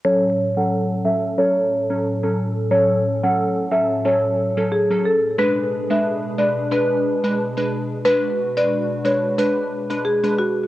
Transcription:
0.05 5.35 A2 medium
0.05 0.24 F#3 medium
0.05 5.34 F#3 medium
0.05 0.25 C#4 medium
0.05 5.34 C#4 medium
0.05 5.34 A4 medium
0.05 0.25 A4 loud
0.05 0.31 C#5 loud
0.57 1.01 F#3 medium
0.57 1.01 C#4 medium
0.57 1.02 A4 medium
0.57 0.68 F#5 medium
1.05 1.36 F#3 medium
1.05 1.36 C#4 medium
1.05 1.36 A4 medium
1.05 1.20 E5 medium
1.38 1.86 F#3 medium
1.38 1.86 C#4 medium
1.38 1.86 A4 loud
1.38 1.87 C#5 medium
1.90 2.06 F#3 medium
1.90 2.06 C#4 medium
1.90 2.06 A4 medium
2.23 2.39 F#3 medium
2.23 2.39 C#4 medium
2.23 2.40 A4 medium
2.71 2.91 F#3 medium
2.71 2.91 C#4 medium
2.71 2.91 A4 loud
2.71 2.98 C#5 loud
3.23 3.68 F#3 medium
3.23 3.68 C#4 medium
3.23 3.68 A4 medium
3.23 3.35 F#5 medium
3.71 4.03 F#3 medium
3.71 4.03 C#4 medium
3.71 4.03 A4 medium
3.71 3.86 E5 medium
4.05 4.52 F#3 medium
4.05 4.53 C#4 medium
4.05 4.53 A4 medium
4.05 4.54 C#5 medium
4.57 4.73 F#3 medium
4.57 4.73 C#4 medium
4.57 4.73 A4 medium
4.72 4.87 G#4 medium
4.90 5.06 F#3 medium
4.90 5.06 C#4 medium
4.90 5.06 A4 medium
5.05 5.20 A4 medium
5.38 10.67 B2 medium
5.38 5.58 G#3 medium
5.38 10.67 G#3 medium
5.38 5.58 D4 medium
5.38 10.67 D4 medium
5.38 8.02 G#4 medium
5.38 5.65 B4 loud
5.38 5.58 B4 loud
5.90 6.35 G#3 medium
5.90 6.35 D4 medium
5.90 6.35 B4 medium
5.90 6.02 E5 medium
6.38 6.69 G#3 medium
6.38 6.69 D4 medium
6.38 6.70 B4 medium
6.38 6.53 D5 medium
6.71 7.19 G#3 medium
6.71 7.19 D4 medium
6.71 7.19 B4 loud
6.71 7.21 B4 loud
7.24 7.39 G#3 medium
7.24 7.40 D4 medium
7.24 7.40 B4 medium
7.57 7.73 G#3 medium
7.57 7.73 D4 medium
7.57 7.73 B4 medium
8.05 8.25 G#3 medium
8.05 8.25 D4 medium
8.05 10.67 F#4 medium
8.05 8.31 B4 loud
8.05 8.25 B4 loud
8.57 9.01 G#3 medium
8.57 9.02 D4 medium
8.57 9.02 B4 medium
8.57 8.69 D5 medium
9.05 9.36 G#3 medium
9.05 9.36 D4 medium
9.05 9.36 B4 medium
9.05 9.20 C#5 medium
9.38 9.86 G#3 medium
9.38 9.86 D4 medium
9.38 9.87 B4 medium
9.38 9.86 B4 loud
9.90 10.06 G#3 medium
9.90 10.06 D4 medium
9.90 10.06 B4 medium
10.05 10.20 G#4 medium
10.24 10.39 G#3 medium
10.24 10.40 D4 medium
10.24 10.40 B4 medium
10.39 10.53 F#4 medium

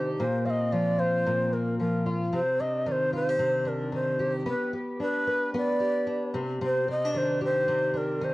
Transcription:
0.00 0.18 C3 medium
0.00 0.25 D#3 medium
0.00 0.25 D4 medium
0.00 0.25 G4 medium
0.18 1.25 A#2 medium
0.18 0.47 C5 medium
0.45 1.52 C4 soft
0.45 0.51 F5 medium
0.50 0.74 D#5 medium
0.72 1.79 F3 medium
0.72 1.01 D5 medium
0.98 2.05 F4 medium
0.98 1.55 C5 medium
1.26 2.32 A#2 medium
1.53 2.59 C4 soft
1.53 1.79 A#4 medium
1.80 2.39 F3 medium
1.80 2.19 A#4 medium
2.06 2.39 F4 medium
2.33 3.38 C3 medium
2.33 2.62 C5 medium
2.60 3.65 D4 soft
2.60 2.90 D#5 medium
2.86 3.91 D#3 medium
2.86 2.93 D5 medium
2.92 3.14 C5 medium
3.13 3.29 F4 medium
3.13 3.69 C5 medium
3.29 4.18 G4 soft
3.39 4.53 C3 medium
3.65 4.73 D4 soft
3.65 3.94 A#4 medium
3.92 4.46 D#3 medium
3.92 4.34 C5 medium
4.19 4.73 G4 medium
4.46 5.53 B3 medium
4.46 4.72 B4 medium
4.73 5.80 G4 soft
5.00 6.06 D4 medium
5.00 5.51 B4 medium
5.27 6.41 B4 medium
5.54 6.41 B3 medium
5.54 6.32 D5 medium
5.80 6.88 G4 soft
6.07 6.64 D4 medium
6.34 6.60 C3 medium
6.61 7.67 C3 medium
6.65 6.88 C5 medium
6.88 7.05 C4 soft
6.88 7.19 D#5 medium
7.05 7.93 D4 soft
7.14 8.20 D#3 medium
7.14 7.43 C5 medium
7.41 8.34 G4 medium
7.41 7.99 C5 medium
7.68 8.34 C3 medium
7.94 8.34 D4 medium
7.94 8.26 A#4 medium
8.21 8.34 D#3 medium
8.21 8.34 C5 medium

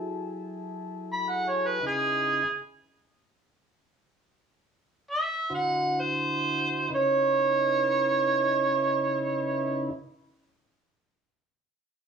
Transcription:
0.00 1.79 F#3 medium
0.00 1.79 E4 medium
0.00 1.79 G#4 medium
0.00 1.80 A4 medium
1.13 1.32 B5 medium
1.30 1.51 F#5 medium
1.49 1.69 C#5 medium
1.67 1.83 B4 medium
1.81 2.43 C#3 medium
1.81 2.43 D#4 medium
1.81 2.43 E4 medium
1.81 2.42 B4 medium
1.87 2.59 G#4 medium
5.11 5.51 E5 medium
5.50 6.89 D3 medium
5.50 6.89 E4 medium
5.50 6.89 F#4 medium
5.50 6.89 C5 medium
5.55 6.02 F#5 medium
6.00 6.90 C5 medium
6.89 9.89 C#3 medium
6.89 9.90 D#4 medium
6.89 9.90 E4 medium
6.89 9.90 B4 medium
6.95 9.94 C#5 loud

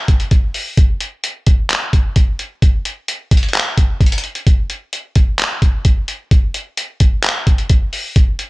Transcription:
0.08 kick medium
0.08 closed hi-hat medium
0.20 closed hi-hat soft
0.31 kick loud
0.31 closed hi-hat medium
0.54 open hi-hat medium
0.77 kick loud
0.77 closed hi-hat medium
1.00 closed hi-hat medium
1.24 closed hi-hat medium
1.46 kick loud
1.46 closed hi-hat medium
1.70 clap loud
1.70 closed hi-hat medium
1.93 kick medium
1.93 closed hi-hat medium
2.16 kick medium
2.16 closed hi-hat medium
2.39 closed hi-hat medium
2.62 kick loud
2.62 closed hi-hat medium
2.85 closed hi-hat medium
3.08 closed hi-hat medium
3.31 kick loud
3.31 closed hi-hat medium
3.37 closed hi-hat medium
3.43 closed hi-hat medium
3.49 closed hi-hat soft
3.54 clap loud
3.54 closed hi-hat medium
3.78 kick medium
3.78 closed hi-hat medium
4.01 kick loud
4.01 closed hi-hat soft
4.06 closed hi-hat medium
4.12 closed hi-hat medium
4.18 closed hi-hat medium
4.24 closed hi-hat soft
4.24 open hi-hat medium
4.35 closed hi-hat medium
4.47 kick loud
4.47 closed hi-hat medium
4.70 closed hi-hat medium
4.93 closed hi-hat medium
5.16 kick loud
5.16 closed hi-hat medium
5.39 clap loud
5.39 closed hi-hat medium
5.62 kick medium
5.62 closed hi-hat medium
5.85 kick loud
5.85 closed hi-hat medium
6.08 closed hi-hat medium
6.31 kick loud
6.31 closed hi-hat medium
6.54 closed hi-hat medium
6.77 closed hi-hat medium
7.00 kick loud
7.00 closed hi-hat medium
7.23 clap loud
7.23 closed hi-hat medium
7.47 kick medium
7.47 closed hi-hat medium
7.58 closed hi-hat soft
7.69 kick loud
7.69 closed hi-hat medium
7.93 open hi-hat medium
8.16 kick loud
8.16 closed hi-hat medium
8.39 closed hi-hat medium

